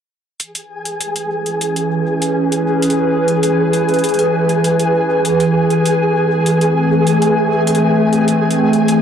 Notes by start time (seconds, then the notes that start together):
0.40 E3 G#4 G#5, closed hi-hat
0.55 closed hi-hat
0.85 closed hi-hat
1.01 C#4, closed hi-hat
1.16 closed hi-hat
1.45 B4, closed hi-hat
1.61 closed hi-hat
1.66 G#4
1.76 closed hi-hat
2.22 closed hi-hat
2.52 closed hi-hat
2.82 closed hi-hat
2.90 closed hi-hat
3.28 closed hi-hat
3.43 closed hi-hat
3.73 closed hi-hat
3.89 closed hi-hat
3.94 closed hi-hat
3.99 closed hi-hat
4.04 closed hi-hat
4.09 closed hi-hat
4.14 closed hi-hat
4.19 closed hi-hat
4.49 closed hi-hat
4.64 closed hi-hat
4.79 closed hi-hat
5.25 closed hi-hat
5.40 closed hi-hat
5.58 C4
5.70 closed hi-hat
5.86 closed hi-hat
6.17 A3
6.46 closed hi-hat
6.61 closed hi-hat
7.07 closed hi-hat
7.22 closed hi-hat
7.67 closed hi-hat
7.75 closed hi-hat
8.13 closed hi-hat
8.28 closed hi-hat
8.51 closed hi-hat
8.73 closed hi-hat
8.88 closed hi-hat